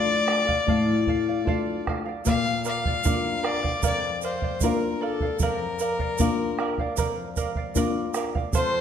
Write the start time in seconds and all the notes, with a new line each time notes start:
Already playing: A3 D4 F4 A4 D5 F5
0.27 A4 D5 F5, bombo rim
0.48 D5 F5, bombo low
0.67 A2 A4 D5 F5, bombo low
1.07 A4 D5 F5, bombo low
1.28 D5 F5
1.45 A3 D4 F4 A4 D5 F5, bombo low
1.87 A4 D5 F5, bombo rim, bombo low
2.06 D5 F5
2.25 A#2 A#4 D5 F5, bombo low, shaker
2.65 A#4 D5 F5, shaker
2.85 D5 F5, bombo low
3.04 A#3 D4 F4 A#4 D5 F5, bombo low, shaker
3.38 F5
3.43 A#4 D5 F5, bombo rim
3.63 D5 F5, bombo low
3.83 F2 A#4 D5 F5, bombo low, shaker
4.21 A#4 C5 D5 F5, shaker
4.42 D5 F5, bombo low
4.61 A#3 D4 F4 A#4 D5, bombo low, shaker
4.65 F5
5.01 A4 A#4 D5 F5
5.20 D5 F5, bombo low
5.39 F2 A#4 D5 F5, bombo low, shaker
5.79 A#4 D5 F5, shaker
5.99 D5 F5, bombo low
6.18 A#3 D4 F4 A#4 D5 F5, bombo low, shaker
6.58 A#4 D5 F5, bombo rim
6.78 D5 F5, bombo low
6.97 F2 A#4 D5 F5, bombo low, shaker
7.36 A#4 D5 F5, bombo low, shaker
7.55 D5 F5, bombo low
7.74 A#3 D4 F4 A#4 D5 F5, bombo low, shaker
8.14 A#4 D5 F5, bombo rim, shaker
8.35 D5 F5, bombo low
8.53 F2 A4 C5 F5, bombo low, shaker